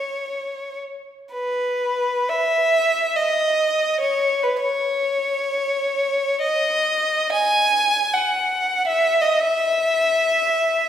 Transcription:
0.00 0.79 C#5 soft
1.34 2.26 B4 soft
2.29 3.18 E5 medium
3.16 4.01 D#5 medium
4.01 4.42 C#5 medium
4.43 4.64 B4 soft
4.62 6.41 C#5 soft
6.42 7.31 D#5 medium
7.32 8.12 G#5 medium
8.14 8.88 F#5 medium
8.87 9.22 E5 medium
9.22 9.41 D#5 medium
9.40 10.89 E5 medium

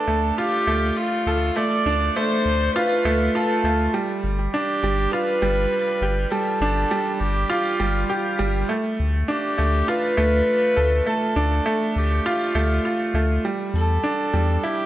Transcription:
0.00 0.07 A3 medium
0.00 1.86 D4 medium
0.00 0.38 A4 medium
0.07 0.32 D2 loud
0.07 0.36 A3 medium
0.36 0.66 F4 medium
0.36 0.98 G4 loud
0.67 0.91 D2 medium
0.67 0.96 A3 medium
0.96 1.57 F4 loud
1.26 1.51 D2 medium
1.26 1.44 A4 medium
1.56 1.85 A3 medium
1.56 2.18 D5 loud
1.86 2.10 D2 medium
1.86 2.15 D4 medium
2.16 2.44 A3 loud
2.16 2.75 C5 loud
2.45 2.70 D2 loud
2.76 3.04 F4 loud
2.76 3.37 B4 loud
3.05 3.29 D2 medium
3.05 3.33 A3 loud
3.35 3.63 F4 medium
3.35 3.94 A4 medium
3.64 3.88 D2 medium
3.64 3.93 A3 medium
3.94 4.22 G3 medium
4.24 4.48 G1 loud
4.53 4.82 D4 loud
4.53 5.13 G4 loud
4.83 5.07 G1 loud
4.83 5.12 G3 medium
5.12 5.41 F4 medium
5.12 6.32 B4 loud
5.42 5.67 G1 medium
5.42 5.71 G3 medium
6.01 6.26 G1 medium
6.01 6.19 G4 medium
6.31 6.60 G3 medium
6.31 7.21 A4 loud
6.61 6.85 G1 medium
6.61 6.90 D4 loud
6.91 7.19 G3 medium
7.20 7.45 G1 loud
7.20 8.39 G4 loud
7.50 7.78 F4 loud
7.80 8.04 G1 medium
7.80 8.08 G3 loud
8.10 8.38 G4 loud
8.39 8.64 G1 medium
8.39 8.68 G3 medium
8.69 8.97 A3 medium
8.99 9.24 D2 loud
9.28 9.57 D4 loud
9.28 9.90 G4 loud
9.58 9.83 D2 loud
9.58 9.87 A3 medium
9.88 10.16 F4 medium
9.88 11.09 B4 loud
10.17 10.42 D2 medium
10.17 10.46 A3 loud
10.76 11.01 D2 medium
10.76 10.94 A4 medium
11.06 11.35 A3 medium
11.06 11.96 A4 loud
11.36 11.61 D2 loud
11.36 11.65 D4 loud
11.66 11.94 A3 loud
11.96 12.20 D2 loud
11.96 13.12 G4 medium
12.26 12.54 F4 loud
12.55 12.79 D2 medium
12.55 12.84 A3 loud
12.85 13.13 F4 medium
13.14 13.39 D2 loud
13.14 13.43 A3 medium
13.45 13.73 G3 medium
13.74 13.98 E2 loud
13.74 14.65 A4 medium
14.04 14.32 D4 loud
14.33 14.58 E2 loud
14.33 14.62 G3 medium
14.63 14.86 E4 medium
14.63 14.86 G4 loud

